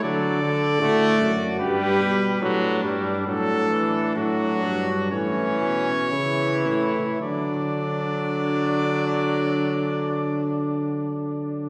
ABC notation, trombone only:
X:1
M:4/4
L:1/8
Q:1/4=62
K:D
V:1 name="Trombone" clef=bass
F, D, A, z G,2 F, G, | F, E, F,2 E,2 E,2 | F,8 |]